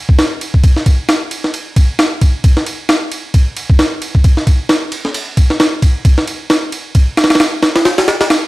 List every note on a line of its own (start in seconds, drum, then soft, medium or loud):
0.09 kick loud
0.19 snare loud
0.19 ride medium
0.41 ride medium
0.54 kick medium
0.64 kick loud
0.64 ride medium
0.76 snare soft
0.86 kick medium
0.86 ride medium
1.09 snare loud
1.09 ride medium
1.31 ride medium
1.44 snare soft
1.54 ride medium
1.76 kick loud
1.76 ride medium
1.99 snare loud
1.99 ride medium
2.21 kick medium
2.21 ride medium
2.44 kick loud
2.44 ride medium
2.57 snare medium
2.66 ride medium
2.89 snare loud
2.89 ride medium
3.12 ride medium
3.34 kick loud
3.34 ride medium
3.57 ride medium
3.70 kick medium
3.79 snare loud
3.79 ride medium
4.02 ride medium
4.15 kick medium
4.24 kick loud
4.24 ride medium
4.37 snare soft
4.47 kick medium
4.47 ride medium
4.69 snare loud
4.69 ride medium
4.92 ride medium
5.05 snare soft
5.14 ride medium
5.37 kick medium
5.37 ride medium
5.50 snare soft
5.60 snare loud
5.60 ride medium
5.82 kick medium
5.82 ride medium
6.05 kick loud
6.05 ride medium
6.18 snare medium
6.27 ride medium
6.50 snare loud
6.50 ride medium
6.72 ride medium
6.95 kick loud
6.95 ride medium
7.17 snare medium
7.17 ride medium
7.24 snare medium
7.24 ride medium
7.30 snare medium
7.30 ride medium
7.35 snare medium
7.35 ride medium
7.40 snare loud
7.40 ride medium
7.62 snare loud
7.62 ride medium
7.76 snare loud
7.76 ride medium
7.85 snare loud
7.85 ride medium
7.98 snare loud
7.98 ride medium
8.08 snare loud
8.08 ride medium
8.21 snare loud
8.21 ride medium
8.30 snare loud
8.30 ride medium